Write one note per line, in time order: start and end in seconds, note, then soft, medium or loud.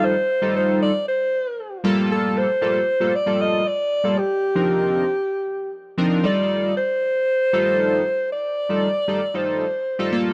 0.00 0.14 G3 medium
0.00 0.15 D#4 medium
0.00 0.15 F4 medium
0.00 0.15 A4 medium
0.05 0.56 C5 loud
0.42 0.91 G3 medium
0.42 0.91 D#4 medium
0.42 0.91 F4 medium
0.42 0.91 A4 medium
0.56 0.80 C5 loud
0.82 1.06 D5 medium
1.08 1.81 C5 medium
1.84 2.46 G3 loud
1.84 2.46 A#3 medium
1.84 2.46 F4 loud
1.84 2.46 A4 loud
2.12 2.39 A4 loud
2.38 3.17 C5 loud
2.61 2.80 G3 medium
2.61 2.80 A#3 medium
2.61 2.80 F4 medium
2.61 2.80 A4 medium
3.00 3.13 G3 medium
3.00 3.13 A#3 medium
3.00 3.13 F4 medium
3.00 3.13 A4 medium
3.15 3.43 D5 loud
3.26 3.63 G3 medium
3.26 3.63 A#3 medium
3.26 3.63 F4 medium
3.26 3.63 A4 medium
3.41 3.69 D#5 loud
3.67 4.20 D5 loud
4.04 4.17 G3 medium
4.04 4.17 A#3 medium
4.04 4.17 F4 medium
4.04 4.17 A4 medium
4.19 5.73 G4 medium
4.55 5.04 F3 medium
4.55 5.04 C4 medium
4.55 5.04 D4 medium
4.55 5.05 D#4 medium
4.55 5.05 A#4 medium
5.98 6.24 F3 medium
5.98 6.24 C4 medium
5.98 6.24 D4 medium
5.98 6.22 D#4 medium
5.98 6.24 A#4 medium
6.23 6.72 G3 medium
6.23 6.72 D#4 medium
6.23 6.73 F4 medium
6.23 6.73 A4 medium
6.23 6.73 D5 loud
6.77 8.27 C5 loud
7.53 8.02 G3 loud
7.53 8.02 D#4 medium
7.53 8.02 F4 loud
7.53 8.02 A4 loud
8.32 9.37 D5 loud
8.69 8.88 G3 medium
8.69 8.88 D#4 medium
8.69 8.88 F4 medium
8.69 8.88 A4 medium
9.08 9.20 G3 medium
9.08 9.20 D#4 medium
9.08 9.21 F4 medium
9.08 9.21 A4 medium
9.34 9.65 G3 medium
9.34 9.65 D#4 medium
9.34 9.65 F4 medium
9.34 9.65 A4 medium
9.34 10.12 C5 medium
9.99 10.11 G3 loud
9.99 10.12 D#4 medium
9.99 10.11 F4 medium
9.99 10.11 A4 loud
10.12 10.33 G3 medium
10.12 10.33 A#3 medium
10.12 10.33 F4 medium
10.12 10.33 A4 loud